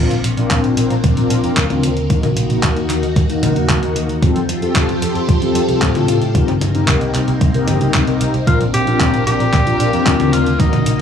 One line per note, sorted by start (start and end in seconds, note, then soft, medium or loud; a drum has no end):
0.00 4.18 A#3 medium
0.00 0.15 C4 medium
0.00 2.08 C4 medium
0.00 0.15 D4 medium
0.00 2.08 D4 medium
0.00 0.15 F4 medium
0.00 0.15 A#4 medium
0.11 0.21 A#1 medium
0.11 closed hi-hat soft
0.24 0.35 A#1 medium
0.24 closed hi-hat medium
0.37 0.48 A#1 medium
0.37 0.74 C4 medium
0.37 0.74 D4 medium
0.37 0.74 F4 medium
0.37 0.74 A#4 loud
0.37 closed hi-hat soft
0.51 0.61 A#2 medium
0.51 kick loud
0.51 clap loud
0.51 closed hi-hat medium
0.64 0.75 A#1 medium
0.64 closed hi-hat soft
0.77 0.88 A#1 medium
0.77 0.94 C4 medium
0.77 0.94 D4 medium
0.77 0.94 F4 medium
0.77 0.94 A#4 medium
0.77 closed hi-hat medium
0.90 1.01 A#1 medium
0.90 closed hi-hat soft
1.04 1.14 A#1 medium
1.04 kick loud
1.04 closed hi-hat medium
1.17 1.28 A#1 medium
1.17 1.41 C4 medium
1.17 1.41 D4 medium
1.17 1.41 F4 medium
1.17 1.40 A#4 loud
1.17 closed hi-hat soft
1.30 1.41 A#1 medium
1.30 closed hi-hat medium
1.44 1.54 F2 medium
1.44 1.66 C4 medium
1.44 1.66 D4 medium
1.44 1.66 F4 medium
1.44 1.66 A#4 medium
1.44 closed hi-hat soft
1.57 1.67 D2 medium
1.57 kick loud
1.57 clap loud
1.57 closed hi-hat medium
1.70 1.81 D2 medium
1.70 1.97 C4 medium
1.70 1.97 D4 medium
1.70 1.97 F4 medium
1.70 1.97 A#4 medium
1.70 closed hi-hat soft
1.70 high tom medium
1.83 1.94 D2 medium
1.83 closed hi-hat medium
1.97 2.07 D2 medium
1.97 closed hi-hat soft
2.10 2.21 D#2 medium
2.10 2.27 A#3 medium
2.10 2.27 D#4 medium
2.10 4.20 D#4 medium
2.10 2.27 F#4 medium
2.10 4.20 F#4 medium
2.10 2.27 A#4 medium
2.10 kick loud
2.10 closed hi-hat medium
2.23 2.34 A#1 medium
2.23 closed hi-hat soft
2.23 high tom medium
2.37 2.47 A#1 medium
2.37 closed hi-hat medium
2.50 2.60 A#1 medium
2.50 2.86 A#3 medium
2.50 2.86 D#4 medium
2.50 2.86 F#4 medium
2.50 2.86 A#4 loud
2.50 closed hi-hat soft
2.63 2.74 D#2 loud
2.63 kick loud
2.63 clap loud
2.63 closed hi-hat medium
2.77 2.87 D#2 medium
2.77 closed hi-hat soft
2.90 3.00 D#2 medium
2.90 3.07 A#3 medium
2.90 3.07 D#4 medium
2.90 3.07 F#4 medium
2.90 3.07 A#4 medium
2.90 clap soft
2.90 closed hi-hat medium
3.03 3.14 D#2 medium
3.03 closed hi-hat soft
3.16 3.27 D#2 loud
3.16 kick loud
3.16 closed hi-hat medium
3.29 3.40 D#2 medium
3.29 3.53 A#3 medium
3.29 3.53 D#4 medium
3.29 3.53 F#4 medium
3.29 3.53 A#4 loud
3.29 closed hi-hat soft
3.43 3.53 A#1 medium
3.43 closed hi-hat medium
3.43 high tom medium
3.56 3.67 D#2 medium
3.56 3.79 A#3 medium
3.56 3.79 D#4 medium
3.56 3.79 F#4 medium
3.56 3.79 A#4 medium
3.56 closed hi-hat soft
3.69 3.80 D#2 medium
3.69 kick loud
3.69 clap loud
3.69 closed hi-hat medium
3.83 3.93 D#2 medium
3.83 4.10 A#3 medium
3.83 4.10 D#4 medium
3.83 4.10 F#4 medium
3.83 4.10 A#4 medium
3.83 closed hi-hat soft
3.96 4.06 D#2 medium
3.96 closed hi-hat medium
4.09 4.20 D#2 medium
4.09 closed hi-hat soft
4.22 4.33 F2 loud
4.22 6.33 F3 medium
4.22 4.39 C4 medium
4.22 4.39 F4 medium
4.22 6.33 F4 medium
4.22 4.39 G4 medium
4.22 6.33 G4 medium
4.22 6.33 A4 medium
4.22 4.39 A4 medium
4.22 6.33 C5 medium
4.22 kick loud
4.22 closed hi-hat medium
4.36 4.46 F2 medium
4.36 closed hi-hat soft
4.49 4.60 F2 medium
4.49 closed hi-hat medium
4.62 4.73 F2 medium
4.62 4.99 C4 medium
4.62 4.99 F4 medium
4.62 4.99 G4 medium
4.62 4.99 A4 loud
4.62 closed hi-hat soft
4.76 4.86 F1 loud
4.76 kick loud
4.76 clap loud
4.76 closed hi-hat medium
4.89 4.99 F2 medium
4.89 closed hi-hat soft
5.02 5.13 F2 medium
5.02 5.19 C4 medium
5.02 5.19 F4 medium
5.02 5.19 G4 medium
5.02 5.19 A4 medium
5.02 closed hi-hat medium
5.15 5.26 F2 medium
5.15 closed hi-hat soft
5.29 5.39 F2 loud
5.29 kick loud
5.29 closed hi-hat medium
5.42 5.52 F2 medium
5.42 5.65 C4 medium
5.42 5.65 F4 medium
5.42 5.65 G4 medium
5.42 5.65 A4 loud
5.42 closed hi-hat soft
5.55 5.66 F2 medium
5.55 closed hi-hat medium
5.68 5.79 C2 medium
5.68 5.91 C4 medium
5.68 5.91 F4 medium
5.68 5.91 G4 medium
5.68 5.91 A4 medium
5.68 closed hi-hat soft
5.82 5.92 A2 medium
5.82 kick loud
5.82 clap loud
5.82 closed hi-hat medium
5.95 6.06 A2 medium
5.95 6.22 C4 medium
5.95 6.22 F4 medium
5.95 6.22 G4 medium
5.95 6.22 A4 medium
5.95 closed hi-hat soft
5.95 high tom medium
6.08 6.19 A2 medium
6.08 closed hi-hat medium
6.22 6.32 A2 medium
6.22 closed hi-hat soft
6.35 6.45 C2 medium
6.35 8.45 A#3 medium
6.35 6.52 C4 medium
6.35 10.56 C4 medium
6.35 6.52 D#4 medium
6.35 8.45 D#4 medium
6.35 6.52 G4 medium
6.35 6.52 A#4 loud
6.35 kick loud
6.35 closed hi-hat medium
6.48 6.59 G1 medium
6.48 closed hi-hat soft
6.48 high tom medium
6.61 6.72 G1 medium
6.61 closed hi-hat medium
6.61 high tom medium
6.75 6.85 G1 medium
6.75 7.11 C4 medium
6.75 7.11 D#4 medium
6.75 7.11 G4 medium
6.75 7.11 A#4 loud
6.75 closed hi-hat soft
6.88 6.98 C2 loud
6.88 kick loud
6.88 clap loud
6.88 closed hi-hat medium
7.01 7.12 C2 medium
7.01 closed hi-hat soft
7.15 7.25 C2 medium
7.15 7.32 C4 medium
7.15 7.32 D#4 medium
7.15 7.32 G4 medium
7.15 7.32 A#4 medium
7.15 clap soft
7.15 closed hi-hat medium
7.28 7.38 C2 medium
7.28 closed hi-hat soft
7.41 7.52 C2 medium
7.41 kick loud
7.41 closed hi-hat medium
7.54 7.65 C2 medium
7.54 7.78 C4 medium
7.54 7.78 D#4 medium
7.54 7.78 G4 medium
7.54 7.78 A#4 loud
7.54 closed hi-hat soft
7.68 7.78 G1 medium
7.68 closed hi-hat medium
7.68 high tom medium
7.81 7.91 C2 medium
7.81 8.03 C4 medium
7.81 8.03 D#4 medium
7.81 8.03 G4 medium
7.81 8.03 A#4 medium
7.81 closed hi-hat soft
7.94 8.05 C2 loud
7.94 kick loud
7.94 clap loud
7.94 closed hi-hat medium
8.07 8.18 C2 medium
8.07 8.35 C4 medium
8.07 8.35 D#4 medium
8.07 8.35 G4 medium
8.07 8.35 A#4 medium
8.07 closed hi-hat soft
8.21 8.31 C2 medium
8.21 closed hi-hat medium
8.34 8.45 C2 medium
8.34 closed hi-hat soft
8.47 8.58 A#1 medium
8.47 11.02 A#3 medium
8.47 8.64 C4 medium
8.47 8.64 D4 medium
8.47 10.57 D4 medium
8.47 8.59 F4 medium
8.47 8.64 F4 medium
8.47 8.64 A#4 medium
8.47 kick loud
8.47 closed hi-hat medium
8.61 8.71 A#1 medium
8.61 closed hi-hat soft
8.74 8.84 A#1 medium
8.74 9.23 G4 loud
8.74 closed hi-hat medium
8.87 8.98 A#1 medium
8.87 9.24 C4 medium
8.87 9.24 D4 medium
8.87 9.24 F4 medium
8.87 9.24 A#4 loud
8.87 closed hi-hat soft
9.00 9.11 A#2 medium
9.00 kick loud
9.00 clap loud
9.00 closed hi-hat medium
9.14 9.24 A#1 medium
9.14 closed hi-hat soft
9.27 9.37 A#1 medium
9.27 9.44 C4 medium
9.27 9.44 D4 medium
9.27 9.44 F4 medium
9.27 10.34 G4 loud
9.27 9.44 A#4 medium
9.27 closed hi-hat medium
9.40 9.51 A#1 medium
9.40 closed hi-hat soft
9.53 9.64 A#1 medium
9.53 kick loud
9.53 clap soft
9.53 closed hi-hat medium
9.67 9.77 A#1 medium
9.67 9.90 C4 medium
9.67 9.90 D4 medium
9.67 9.90 F4 medium
9.67 9.90 A#4 medium
9.67 closed hi-hat soft
9.80 9.91 A#1 medium
9.80 closed hi-hat medium
9.93 10.04 F2 medium
9.93 10.16 C4 medium
9.93 10.16 D4 medium
9.93 10.16 F4 medium
9.93 10.16 A#4 medium
9.93 closed hi-hat soft
10.07 10.17 D2 loud
10.07 kick loud
10.07 clap loud
10.07 closed hi-hat medium
10.20 10.30 D2 medium
10.20 10.47 C4 medium
10.20 10.47 D4 medium
10.20 10.47 F4 medium
10.20 10.47 A#4 medium
10.20 closed hi-hat soft
10.20 high tom medium
10.33 10.44 D2 loud
10.33 10.61 F4 medium
10.33 closed hi-hat medium
10.46 10.57 D2 medium
10.46 closed hi-hat soft
10.60 10.70 D#2 medium
10.60 10.77 A#3 medium
10.60 11.02 D#4 medium
10.60 10.77 D#4 medium
10.60 11.02 F#4 medium
10.60 10.77 F#4 medium
10.60 10.77 A#4 medium
10.60 kick loud
10.60 closed hi-hat medium
10.73 10.83 A#1 medium
10.73 closed hi-hat soft
10.73 high tom medium
10.86 10.97 A#1 medium
10.86 closed hi-hat medium